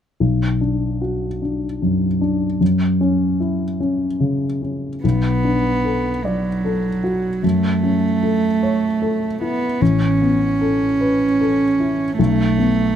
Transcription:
0.20 grand piano B1
0.61 grand piano D4
1.01 grand piano F#4
1.42 grand piano D4
1.82 grand piano F#2
2.21 grand piano D4
2.61 grand piano F#2
3.01 grand piano C#4
3.40 grand piano E4
3.80 grand piano C#4
4.20 grand piano C#3
4.62 grand piano C#4
5.04 grand piano B1, cello B3
5.45 grand piano D4
5.85 grand piano A4
6.25 cello F#3, grand piano D5
6.65 grand piano A4
7.04 grand piano F#4
7.43 grand piano F#2, cello A3
7.83 grand piano C#4
8.23 grand piano A4
8.63 grand piano C#5
9.02 grand piano A4
9.41 cello B3, grand piano E4
9.81 grand piano A1, cello C#4
10.21 grand piano B3
10.61 grand piano A4
11.01 grand piano B4
11.41 grand piano A4
11.80 grand piano E4
12.19 grand piano B1, cello A3
12.58 grand piano B3

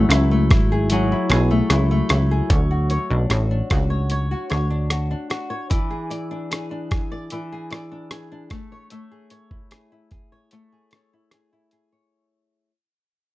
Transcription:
Already playing: nylon-string guitar F#3 A3 G#4
0.09 analog synth bass C#2, nylon-string guitar E4, cross-stick, closed hi-hat
0.31 nylon-string guitar A3
0.50 analog synth bass G#1, nylon-string guitar E4, kick, cross-stick, closed hi-hat
0.72 nylon-string guitar G#4
0.90 nylon-string guitar F#3 G#4, closed hi-hat
1.12 nylon-string guitar E4
1.30 analog synth bass B1, nylon-string guitar G#4, cross-stick, closed hi-hat
1.50 nylon-string guitar A3
1.70 analog synth bass C#2, nylon-string guitar E4, cross-stick, closed hi-hat
1.91 nylon-string guitar A3
2.09 analog synth bass C#2, nylon-string guitar E4, cross-stick, closed hi-hat
2.31 nylon-string guitar G#4
2.50 analog synth bass D2, nylon-string guitar C#5, kick, closed hi-hat
2.71 nylon-string guitar F#4
2.90 nylon-string guitar C#5, closed hi-hat
3.11 analog synth bass B1, nylon-string guitar D4
3.30 analog synth bass A1, nylon-string guitar F#4, cross-stick, closed hi-hat
3.51 nylon-string guitar D4
3.70 analog synth bass C#2, nylon-string guitar F#4, kick, cross-stick, closed hi-hat
3.90 nylon-string guitar C#5
4.10 nylon-string guitar C#5, closed hi-hat
4.31 nylon-string guitar F#4
4.50 analog synth bass D2, nylon-string guitar C#5, cross-stick, closed hi-hat
4.70 nylon-string guitar D4
4.90 nylon-string guitar F#4, cross-stick, closed hi-hat
5.11 nylon-string guitar D4
5.30 nylon-string guitar F#4, cross-stick, closed hi-hat
5.50 nylon-string guitar C#5
5.70 nylon-string guitar E3 D5, kick, closed hi-hat
5.91 nylon-string guitar G#4
6.10 nylon-string guitar D5, closed hi-hat
6.31 nylon-string guitar D4
6.51 nylon-string guitar G#4, cross-stick, closed hi-hat
6.71 nylon-string guitar D4
6.91 nylon-string guitar G#4, kick, cross-stick, closed hi-hat
7.12 nylon-string guitar D5
7.30 nylon-string guitar E3 D5, closed hi-hat
7.52 nylon-string guitar G#4
7.71 nylon-string guitar D5, cross-stick, closed hi-hat
7.92 nylon-string guitar D4
8.11 nylon-string guitar G#4, cross-stick, closed hi-hat
8.32 nylon-string guitar D4
8.50 nylon-string guitar A3, kick, cross-stick, closed hi-hat
8.72 nylon-string guitar C#5
8.90 nylon-string guitar A3 C#5, closed hi-hat
9.11 nylon-string guitar G#4
9.30 nylon-string guitar C#5, closed hi-hat
9.51 nylon-string guitar E4, kick
9.71 nylon-string guitar G#4, cross-stick, closed hi-hat
9.92 nylon-string guitar E4
10.11 nylon-string guitar G#4, kick, closed hi-hat
10.32 nylon-string guitar C#5
10.51 nylon-string guitar A3 C#5, closed hi-hat
10.72 nylon-string guitar G#4
10.91 nylon-string guitar C#5, cross-stick, closed hi-hat
11.13 nylon-string guitar E4
11.31 nylon-string guitar G#4, cross-stick, closed hi-hat
11.53 nylon-string guitar E4
11.71 nylon-string guitar G#4, closed hi-hat
11.92 nylon-string guitar C#5

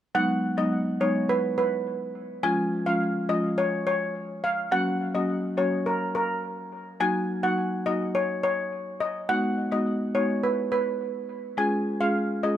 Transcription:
0.15 marimba F#3 G#3 B3 D#4, steel pan F#5
0.57 marimba F#3 G#3 B3 D#4, steel pan D#5
1.00 marimba F#3 G#3 B3 D#4, steel pan C#5
1.29 steel pan B4
1.58 steel pan B4
2.43 marimba F3 G#3 C#4 F4, steel pan G#5
2.86 marimba F3 G#3 C#4 F4, steel pan F5
3.29 marimba F3 G#3 C#4 F4, steel pan D#5
3.58 steel pan C#5
3.87 steel pan C#5
4.44 steel pan F5
4.71 marimba F#3 A#3 C#4 F#4, steel pan F#5
5.15 marimba F#3 A#3 C#4 F#4, steel pan D#5
5.57 marimba F#3 A#3 C#4 F#4, steel pan C#5
5.86 steel pan A#4
6.15 steel pan A#4
7.00 marimba F#3 A#3 D#4 F#4, steel pan G#5
7.43 marimba F#3 A#3 D#4 F#4, steel pan F#5
7.86 marimba F#3 A#3 D#4 F#4, steel pan D#5
8.15 steel pan C#5
8.43 steel pan C#5
9.00 steel pan D#5
9.29 marimba G#3 B3 D#4 F#4, steel pan F#5
9.72 marimba G#3 B3 D#4 F#4, steel pan D#5
10.15 marimba G#3 B3 D#4 F#4, steel pan C#5
10.43 steel pan B4
10.72 steel pan B4
11.57 marimba G#3 C#4 F4 G#4, steel pan G#5
12.00 marimba G#3 C#4 F4 G#4, steel pan F5
12.43 marimba G#3 C#4 F4 G#4, steel pan D#5

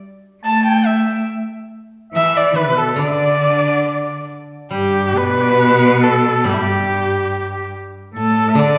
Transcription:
0.42 cello A3, oboe A5, erhu A5
0.63 oboe G5, erhu G5
0.86 erhu E5
2.12 cello E3, oboe E5, erhu E5
2.36 erhu D5
2.55 cello B2, oboe B4, erhu B4
2.76 oboe A4, erhu A4
2.96 guzheng D3, cello D3, oboe D5, erhu D5
3.07 oboe E5
3.13 oboe D5
4.71 cello G2, guzheng G3, erhu G4, oboe G4
5.14 cello B2, oboe B4, erhu B4
5.24 oboe D5
5.30 oboe B4
5.41 oboe D5
5.49 oboe B4
5.81 oboe B4
6.01 oboe A4, erhu A4
6.44 cello G2, guzheng G3, oboe G4
6.49 erhu G4, oboe G4 A4
6.54 erhu E4
6.59 cello G2, oboe G4, erhu G4
7.51 oboe G4
8.14 cello A2, oboe A4
8.19 erhu A4
8.49 oboe E5
8.55 guzheng D3, cello D3, oboe D5, erhu D5

